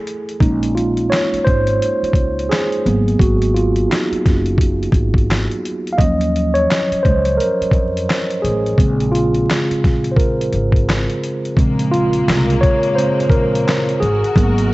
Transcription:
0.07 closed hi-hat
0.29 closed hi-hat
0.40 upright bass A#1, tine electric piano G#3 A#3 C#4 D#4, kick, closed hi-hat
0.63 closed hi-hat
0.75 tine electric piano F4, closed hi-hat
0.97 closed hi-hat
1.10 tine electric piano C#5, snare, clap, closed hi-hat
1.33 muted upright bass stroke, closed hi-hat
1.44 upright bass G#1, tine electric piano C5, kick, closed hi-hat
1.67 closed hi-hat
1.82 closed hi-hat
2.02 muted upright bass stroke, closed hi-hat
2.13 upright bass C#2, kick, closed hi-hat
2.39 closed hi-hat
2.49 tine electric piano G#4, snare, clap, closed hi-hat
2.72 closed hi-hat
2.85 upright bass G#1, tine electric piano F#3 A#3 B3, closed hi-hat
3.08 closed hi-hat
3.19 upright bass G#1, tine electric piano F#4, kick, closed hi-hat
3.42 closed hi-hat
3.54 tine electric piano F4, closed hi-hat
3.76 closed hi-hat
3.90 tine electric piano D#4, snare, clap, closed hi-hat
4.12 muted upright bass stroke, closed hi-hat
4.26 upright bass F#1, kick, snare, closed hi-hat
4.46 closed hi-hat
4.58 kick, closed hi-hat
4.83 closed hi-hat
4.92 upright bass G#1, kick, closed hi-hat
5.14 kick, closed hi-hat
5.31 snare, clap, closed hi-hat
5.51 closed hi-hat
5.65 closed hi-hat
5.87 closed hi-hat
5.93 tine electric piano F5
5.98 upright bass D#2, tine electric piano F3 F#3 C#4 D#5, kick, closed hi-hat
6.21 closed hi-hat
6.36 closed hi-hat
6.54 tine electric piano C#5, closed hi-hat
6.71 snare, clap, closed hi-hat
6.91 muted upright bass stroke, closed hi-hat
7.03 upright bass C#2, tine electric piano C5, kick, closed hi-hat
7.25 closed hi-hat
7.37 tine electric piano A#4, closed hi-hat
7.61 muted upright bass stroke, closed hi-hat
7.71 upright bass F2, kick, closed hi-hat
7.97 closed hi-hat
8.10 snare, clap, closed hi-hat
8.31 closed hi-hat
8.42 upright bass A1, tine electric piano G#4, closed hi-hat
8.66 closed hi-hat
8.78 upright bass A#1, tine electric piano C#3 G#3 C4, kick, closed hi-hat
9.00 closed hi-hat
9.12 tine electric piano F4, closed hi-hat
9.34 closed hi-hat
9.51 snare, clap, closed hi-hat
9.70 muted upright bass stroke, closed hi-hat
9.84 upright bass A#1, kick, snare, closed hi-hat
10.04 closed hi-hat
10.12 tine electric piano C5
10.16 tine electric piano A#4, kick, closed hi-hat
10.41 closed hi-hat
10.53 upright bass G#1, closed hi-hat
10.72 kick, closed hi-hat
10.90 snare, clap, closed hi-hat
11.09 closed hi-hat
11.23 closed hi-hat
11.45 closed hi-hat
11.56 upright bass A#1, string section A#2 G#3 A#3, tine electric piano C#3 G#3 C4, kick, closed hi-hat
11.79 closed hi-hat
11.91 tine electric piano F4, closed hi-hat
12.13 closed hi-hat
12.28 upright bass C2, snare, clap, closed hi-hat
12.50 closed hi-hat
12.61 tine electric piano C#5, kick, closed hi-hat
12.83 closed hi-hat
12.95 tine electric piano C#3 G#3 C4 C5, closed hi-hat
13.20 closed hi-hat
13.30 upright bass A#1, tine electric piano A#4, kick, closed hi-hat
13.55 closed hi-hat
13.69 snare, clap, closed hi-hat
13.89 closed hi-hat
14.00 upright bass G#1, string section D#3 F#4 A#4, tine electric piano G#4, closed hi-hat
14.24 closed hi-hat
14.36 upright bass G#1, tine electric piano F#3 A#3 B3, kick, closed hi-hat
14.58 closed hi-hat

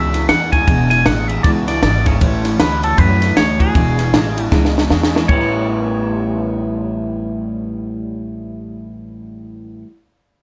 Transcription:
Already playing: upright bass C#2, steel-string acoustic guitar E2 B2 E3 G#3 D4 E4, clean electric guitar E2 B2 E5
0.13 steel-string acoustic guitar E3 G#3 D4 E4, snare, ride
0.28 clean electric guitar E2 C#3 F#5, upright bass E2, steel-string acoustic guitar E3 G#3 D4 E4, snare, ride
0.51 clean electric guitar E2 C#3 G#5, steel-string acoustic guitar E3 G#3 D4 E4, kick, snare, ride
0.67 upright bass E1, steel-string acoustic guitar E2 B2 E3 G#3 D4 E4, clean electric guitar E2 B2, kick, ride
0.90 steel-string acoustic guitar E3 G#3 D4 E4, clean electric guitar G#5, snare, ride
1.05 upright bass A1, clean electric guitar E2 C#3 F#5, steel-string acoustic guitar E3 G#3 D4 E4, snare, ride
1.28 clean electric guitar E2 C#3 E5, steel-string acoustic guitar E3 G#3 D4 E4, ride
1.43 upright bass C#2, steel-string acoustic guitar E2 B2 E3 G#3 D4 E4, clean electric guitar E2 B2 D5, kick, snare, ride
1.67 steel-string acoustic guitar E3 G#3 D4 E4, clean electric guitar D5, snare, ride
1.82 upright bass G#1, clean electric guitar E2 C#3 D5, steel-string acoustic guitar E3 G#3 D4 E4, snare, ride
2.05 clean electric guitar E2 C#3 C#5, steel-string acoustic guitar E3 G#3 D4 E4, kick, snare, ride
2.20 upright bass A1, steel-string acoustic guitar A2 E3 G3 C#4 E4, clean electric guitar A2 E3, kick, ride
2.43 steel-string acoustic guitar G3 C#4 E4, snare, ride
2.57 upright bass D2, clean electric guitar A2 F#3 B4, steel-string acoustic guitar E3 G3 C#4 E4, snare, ride
2.81 clean electric guitar A2 F#3 A4, steel-string acoustic guitar G3 C#4 E4, ride
2.97 upright bass F#2, steel-string acoustic guitar A2 E3 G3 C#4 E4, clean electric guitar A2 E3 B4, kick, ride
3.20 steel-string acoustic guitar G3 C#4 E4, snare, ride
3.35 upright bass D2, clean electric guitar A2 F#3 C#5, steel-string acoustic guitar E3 G3 C#4 E4, snare, ride
3.59 clean electric guitar A2 F#3 G#4, steel-string acoustic guitar G3 C#4 E4, kick, ride
3.74 upright bass E1, clean electric guitar E2 B2, steel-string acoustic guitar E2 B2 E3 G#3 D4 E4, kick, ride
3.98 steel-string acoustic guitar E3 G#3 D4 E4, snare, ride
4.13 upright bass A1, clean electric guitar E2 C#3, steel-string acoustic guitar E3 G#3 D4 E4, snare, ride
4.36 clean electric guitar E2 C#3, steel-string acoustic guitar E3 G#3 D4 E4, ride
4.45 clean electric guitar F#4
4.51 upright bass C#2, steel-string acoustic guitar E2 B2 E3 G#3 D4 E4, clean electric guitar E2 B2, kick, snare
4.65 snare
4.74 steel-string acoustic guitar E3 G#3 D4 E4, snare
4.89 clean electric guitar E2 C#3, upright bass E2, steel-string acoustic guitar E3 G#3 D4 E4, snare
5.03 snare
5.13 clean electric guitar E2 C#3, steel-string acoustic guitar E3 G#3 D4 E4, snare
5.24 steel-string acoustic guitar A2, clean electric guitar A2
5.28 upright bass A1, clean electric guitar E3 G3 C#4 E4 B4 C#5, steel-string acoustic guitar G3, kick
5.33 steel-string acoustic guitar B3
5.37 steel-string acoustic guitar C#4
5.41 steel-string acoustic guitar E4

